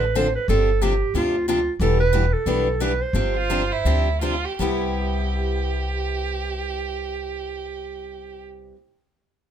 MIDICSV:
0, 0, Header, 1, 6, 480
1, 0, Start_track
1, 0, Key_signature, 0, "major"
1, 0, Tempo, 329489
1, 709, Time_signature, 4, 2, 24, 8
1, 3590, Tempo, 346821
1, 5510, Tempo, 384369
1, 12574, End_track
2, 0, Start_track
2, 0, Title_t, "Clarinet"
2, 0, Program_c, 0, 71
2, 0, Note_on_c, 0, 71, 94
2, 238, Note_on_c, 0, 72, 89
2, 260, Note_off_c, 0, 71, 0
2, 506, Note_off_c, 0, 72, 0
2, 515, Note_on_c, 0, 71, 86
2, 696, Note_off_c, 0, 71, 0
2, 714, Note_on_c, 0, 69, 103
2, 1200, Note_on_c, 0, 67, 84
2, 1221, Note_off_c, 0, 69, 0
2, 1673, Note_off_c, 0, 67, 0
2, 1695, Note_on_c, 0, 65, 84
2, 2128, Note_off_c, 0, 65, 0
2, 2159, Note_on_c, 0, 65, 83
2, 2508, Note_off_c, 0, 65, 0
2, 2653, Note_on_c, 0, 69, 94
2, 2904, Note_off_c, 0, 69, 0
2, 2919, Note_on_c, 0, 71, 96
2, 3404, Note_on_c, 0, 69, 84
2, 3426, Note_off_c, 0, 71, 0
2, 4078, Note_on_c, 0, 71, 88
2, 4099, Note_off_c, 0, 69, 0
2, 4356, Note_on_c, 0, 72, 85
2, 4376, Note_off_c, 0, 71, 0
2, 5978, Note_off_c, 0, 72, 0
2, 12574, End_track
3, 0, Start_track
3, 0, Title_t, "Violin"
3, 0, Program_c, 1, 40
3, 4816, Note_on_c, 1, 65, 80
3, 5314, Note_on_c, 1, 64, 74
3, 5335, Note_off_c, 1, 65, 0
3, 5949, Note_off_c, 1, 64, 0
3, 5956, Note_on_c, 1, 65, 72
3, 6249, Note_on_c, 1, 67, 78
3, 6268, Note_off_c, 1, 65, 0
3, 6443, Note_off_c, 1, 67, 0
3, 6449, Note_on_c, 1, 67, 59
3, 11252, Note_off_c, 1, 67, 0
3, 12574, End_track
4, 0, Start_track
4, 0, Title_t, "Steel-string acoustic guitar"
4, 0, Program_c, 2, 25
4, 2639, Note_on_c, 2, 59, 59
4, 2647, Note_on_c, 2, 67, 70
4, 2924, Note_off_c, 2, 59, 0
4, 2928, Note_off_c, 2, 67, 0
4, 3106, Note_on_c, 2, 59, 76
4, 3117, Note_on_c, 2, 67, 77
4, 3263, Note_off_c, 2, 59, 0
4, 3268, Note_off_c, 2, 67, 0
4, 3595, Note_on_c, 2, 59, 71
4, 3607, Note_on_c, 2, 67, 76
4, 3875, Note_off_c, 2, 59, 0
4, 3880, Note_off_c, 2, 67, 0
4, 4068, Note_on_c, 2, 59, 75
4, 4078, Note_on_c, 2, 67, 81
4, 4215, Note_off_c, 2, 59, 0
4, 4220, Note_off_c, 2, 67, 0
4, 12574, End_track
5, 0, Start_track
5, 0, Title_t, "Steel-string acoustic guitar"
5, 0, Program_c, 3, 25
5, 243, Note_on_c, 3, 50, 73
5, 243, Note_on_c, 3, 53, 72
5, 251, Note_on_c, 3, 60, 75
5, 256, Note_on_c, 3, 62, 72
5, 262, Note_on_c, 3, 69, 72
5, 392, Note_off_c, 3, 50, 0
5, 392, Note_off_c, 3, 53, 0
5, 396, Note_off_c, 3, 60, 0
5, 399, Note_off_c, 3, 62, 0
5, 401, Note_off_c, 3, 69, 0
5, 718, Note_on_c, 3, 48, 56
5, 722, Note_on_c, 3, 53, 63
5, 727, Note_on_c, 3, 60, 54
5, 729, Note_on_c, 3, 62, 66
5, 736, Note_on_c, 3, 67, 60
5, 1004, Note_off_c, 3, 48, 0
5, 1007, Note_off_c, 3, 53, 0
5, 1009, Note_off_c, 3, 60, 0
5, 1010, Note_off_c, 3, 62, 0
5, 1013, Note_off_c, 3, 67, 0
5, 1193, Note_on_c, 3, 48, 70
5, 1196, Note_on_c, 3, 53, 72
5, 1202, Note_on_c, 3, 60, 73
5, 1211, Note_on_c, 3, 62, 74
5, 1211, Note_on_c, 3, 67, 86
5, 1346, Note_off_c, 3, 48, 0
5, 1348, Note_off_c, 3, 53, 0
5, 1351, Note_off_c, 3, 60, 0
5, 1355, Note_off_c, 3, 62, 0
5, 1355, Note_off_c, 3, 67, 0
5, 1669, Note_on_c, 3, 48, 60
5, 1673, Note_on_c, 3, 53, 67
5, 1676, Note_on_c, 3, 60, 59
5, 1683, Note_on_c, 3, 62, 58
5, 1684, Note_on_c, 3, 67, 72
5, 1959, Note_off_c, 3, 48, 0
5, 1961, Note_off_c, 3, 53, 0
5, 1963, Note_off_c, 3, 60, 0
5, 1966, Note_off_c, 3, 62, 0
5, 1967, Note_off_c, 3, 67, 0
5, 2152, Note_on_c, 3, 48, 68
5, 2160, Note_on_c, 3, 53, 78
5, 2168, Note_on_c, 3, 60, 76
5, 2171, Note_on_c, 3, 62, 77
5, 2174, Note_on_c, 3, 67, 75
5, 2305, Note_off_c, 3, 48, 0
5, 2309, Note_off_c, 3, 53, 0
5, 2313, Note_off_c, 3, 60, 0
5, 2315, Note_off_c, 3, 62, 0
5, 2316, Note_off_c, 3, 67, 0
5, 2621, Note_on_c, 3, 52, 58
5, 2631, Note_on_c, 3, 55, 54
5, 2634, Note_on_c, 3, 62, 53
5, 2638, Note_on_c, 3, 64, 63
5, 2642, Note_on_c, 3, 71, 68
5, 2914, Note_off_c, 3, 52, 0
5, 2919, Note_off_c, 3, 55, 0
5, 2921, Note_off_c, 3, 62, 0
5, 2923, Note_off_c, 3, 64, 0
5, 2925, Note_off_c, 3, 71, 0
5, 3113, Note_on_c, 3, 52, 73
5, 3120, Note_on_c, 3, 55, 75
5, 3124, Note_on_c, 3, 62, 76
5, 3125, Note_on_c, 3, 64, 73
5, 3129, Note_on_c, 3, 71, 66
5, 3266, Note_off_c, 3, 52, 0
5, 3270, Note_off_c, 3, 55, 0
5, 3272, Note_off_c, 3, 62, 0
5, 3272, Note_off_c, 3, 64, 0
5, 3274, Note_off_c, 3, 71, 0
5, 3597, Note_on_c, 3, 52, 64
5, 3604, Note_on_c, 3, 55, 57
5, 3610, Note_on_c, 3, 62, 59
5, 3615, Note_on_c, 3, 64, 67
5, 3615, Note_on_c, 3, 71, 62
5, 3875, Note_off_c, 3, 52, 0
5, 3879, Note_off_c, 3, 55, 0
5, 3882, Note_off_c, 3, 62, 0
5, 3885, Note_off_c, 3, 64, 0
5, 3885, Note_off_c, 3, 71, 0
5, 4059, Note_on_c, 3, 52, 63
5, 4069, Note_on_c, 3, 55, 69
5, 4076, Note_on_c, 3, 62, 81
5, 4077, Note_on_c, 3, 64, 70
5, 4078, Note_on_c, 3, 71, 82
5, 4211, Note_off_c, 3, 52, 0
5, 4215, Note_off_c, 3, 55, 0
5, 4219, Note_off_c, 3, 62, 0
5, 4219, Note_off_c, 3, 64, 0
5, 4220, Note_off_c, 3, 71, 0
5, 4542, Note_on_c, 3, 53, 69
5, 4544, Note_on_c, 3, 48, 60
5, 4552, Note_on_c, 3, 60, 59
5, 4557, Note_on_c, 3, 62, 54
5, 4557, Note_on_c, 3, 67, 58
5, 4828, Note_off_c, 3, 53, 0
5, 4829, Note_off_c, 3, 48, 0
5, 4833, Note_off_c, 3, 60, 0
5, 4836, Note_off_c, 3, 62, 0
5, 4836, Note_off_c, 3, 67, 0
5, 5014, Note_on_c, 3, 48, 63
5, 5015, Note_on_c, 3, 53, 75
5, 5026, Note_on_c, 3, 60, 72
5, 5027, Note_on_c, 3, 62, 73
5, 5029, Note_on_c, 3, 67, 82
5, 5173, Note_off_c, 3, 48, 0
5, 5174, Note_off_c, 3, 53, 0
5, 5179, Note_off_c, 3, 60, 0
5, 5180, Note_off_c, 3, 62, 0
5, 5181, Note_off_c, 3, 67, 0
5, 5514, Note_on_c, 3, 48, 60
5, 5519, Note_on_c, 3, 53, 67
5, 5523, Note_on_c, 3, 62, 66
5, 5525, Note_on_c, 3, 60, 60
5, 5528, Note_on_c, 3, 67, 70
5, 5789, Note_off_c, 3, 48, 0
5, 5791, Note_off_c, 3, 53, 0
5, 5794, Note_off_c, 3, 60, 0
5, 5794, Note_off_c, 3, 62, 0
5, 5796, Note_off_c, 3, 67, 0
5, 5964, Note_on_c, 3, 48, 71
5, 5969, Note_on_c, 3, 53, 78
5, 5974, Note_on_c, 3, 60, 72
5, 5975, Note_on_c, 3, 62, 75
5, 5984, Note_on_c, 3, 67, 71
5, 6119, Note_off_c, 3, 48, 0
5, 6121, Note_off_c, 3, 53, 0
5, 6124, Note_off_c, 3, 60, 0
5, 6124, Note_off_c, 3, 62, 0
5, 6129, Note_off_c, 3, 67, 0
5, 6432, Note_on_c, 3, 48, 62
5, 6439, Note_on_c, 3, 55, 74
5, 6451, Note_on_c, 3, 59, 60
5, 6469, Note_on_c, 3, 64, 72
5, 6476, Note_on_c, 3, 67, 73
5, 11618, Note_off_c, 3, 48, 0
5, 11624, Note_off_c, 3, 55, 0
5, 11637, Note_off_c, 3, 59, 0
5, 11654, Note_off_c, 3, 64, 0
5, 11661, Note_off_c, 3, 67, 0
5, 12574, End_track
6, 0, Start_track
6, 0, Title_t, "Upright bass"
6, 0, Program_c, 4, 32
6, 0, Note_on_c, 4, 33, 77
6, 516, Note_off_c, 4, 33, 0
6, 701, Note_on_c, 4, 31, 96
6, 1471, Note_off_c, 4, 31, 0
6, 1659, Note_on_c, 4, 38, 79
6, 2429, Note_off_c, 4, 38, 0
6, 2615, Note_on_c, 4, 28, 95
6, 3391, Note_off_c, 4, 28, 0
6, 3582, Note_on_c, 4, 35, 72
6, 4337, Note_off_c, 4, 35, 0
6, 4515, Note_on_c, 4, 31, 88
6, 5304, Note_off_c, 4, 31, 0
6, 5504, Note_on_c, 4, 38, 69
6, 6253, Note_off_c, 4, 38, 0
6, 6437, Note_on_c, 4, 36, 83
6, 11573, Note_off_c, 4, 36, 0
6, 12574, End_track
0, 0, End_of_file